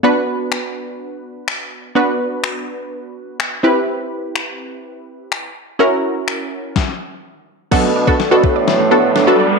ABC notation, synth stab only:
X:1
M:4/4
L:1/16
Q:1/4=125
K:Bphr
V:1 name="Synth stab"
[B,DFB]16 | [B,DFB]12- [B,DFB]2 [CEGB]2- | [CEGB]12- [CEGB]2 z2 | [^CEF^A]8 z8 |
[K:Bm] [B,DFA]2 z [B,DFA] z [B,DFA]3 z2 [B,DFA]2 z [B,DFA]2 z |]